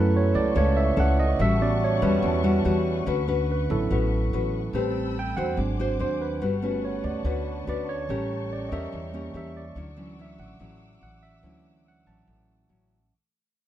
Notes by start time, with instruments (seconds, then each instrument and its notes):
Already playing: upright bass F#2, nylon-string guitar F#3 C#4 E4 A4, tine electric piano A3 C#4 E4 A4 B4, string section A4 E5 F#5 C#6
0.17 tine electric piano C#5
0.34 upright bass C#2, tine electric piano D5
0.55 upright bass C#2, nylon-string guitar C#3 C#4 E4 A4, tine electric piano C#5
0.77 tine electric piano E5
0.96 upright bass C#2, nylon-string guitar C#4 E4 A4, tine electric piano F#5
1.20 tine electric piano D#5
1.39 upright bass A1, nylon-string guitar A2 G3 C#4 F#4, string section B4 A5, tine electric piano E5
1.61 tine electric piano G3 B3 C#4 F#4 D5
1.84 tine electric piano C#5
2.02 upright bass E2, nylon-string guitar G3 C#4 F#4, tine electric piano B4
2.23 upright bass E2, nylon-string guitar E3, tine electric piano G3 B3 C#4 F#4
2.43 nylon-string guitar G3 C#4 F#4
2.65 upright bass E2, nylon-string guitar G3 C#4 F#4
3.06 upright bass D2, nylon-string guitar D3 C#4 F#4 B4, string section E5
3.28 nylon-string guitar C#4 F#4 B4
3.52 tine electric piano B4
3.70 upright bass A1, tine electric piano F#3 B3 C#4 E4 A4
3.90 upright bass A1, nylon-string guitar A2 C#4 F#4 B4
4.33 upright bass A1, nylon-string guitar C#4 F#4 B4
4.73 upright bass A1, tine electric piano G3 C4, nylon-string guitar A3 C4 G4 B4, string section G5 A5 B5 E6
5.19 tine electric piano G5
5.37 upright bass E2, nylon-string guitar D4 F#4 C5, tine electric piano F#5
5.57 upright bass G#1, tine electric piano F#3 C4 D4, nylon-string guitar G#3, string section C5 F#5 G#5 D6
5.79 nylon-string guitar D4 F#4 C5
5.99 upright bass D#2, nylon-string guitar D4 F#4 C5, tine electric piano C5
6.21 tine electric piano B4
6.41 upright bass G1, nylon-string guitar G3 C#4 F#4 B4, string section B4 A5 C#6
6.62 tine electric piano A3 B3 C#4, nylon-string guitar C#4 F#4 B4
6.85 tine electric piano C#5
7.04 upright bass D2, tine electric piano D5
7.24 upright bass D2, nylon-string guitar D3 C#4 F#4 B4
7.67 upright bass D2, nylon-string guitar C#4 F#4 B4, tine electric piano D5
7.89 tine electric piano C#5
8.09 upright bass A1, tine electric piano G3 C#4, nylon-string guitar A3 C#4 G4 A#4, string section A#4 G5
8.53 tine electric piano D5
8.69 upright bass E2, nylon-string guitar C#4 G4, tine electric piano D#5
8.73 nylon-string guitar A#4, tine electric piano E5
8.93 upright bass E2, nylon-string guitar E3
9.13 tine electric piano G3 A#3 C#4, nylon-string guitar C#4 G4 A#4
9.34 upright bass E2, nylon-string guitar C#4 G4 A#4, tine electric piano E5
9.57 tine electric piano D5
9.76 upright bass D2, nylon-string guitar D3 F#3 C#4 E4, string section F#5 D6 E6
9.97 tine electric piano E3 F#3 C#4, nylon-string guitar F#3 C#4 E4
10.19 nylon-string guitar F#3 C#4 E4, tine electric piano E5
10.38 upright bass A1, tine electric piano F#5
10.59 upright bass A1, nylon-string guitar A2 F#3 C#4 E4
11.01 upright bass A1, tine electric piano F#5
11.23 tine electric piano E5
11.43 upright bass D2, nylon-string guitar D3 F#3 C#4 E4, tine electric piano E3 F#3 C#4
11.88 tine electric piano F#5
12.06 upright bass A1, nylon-string guitar F#3 C#4 E4, tine electric piano A5
12.27 upright bass A1, nylon-string guitar A2
12.69 upright bass A1, nylon-string guitar F#3 C#4 E4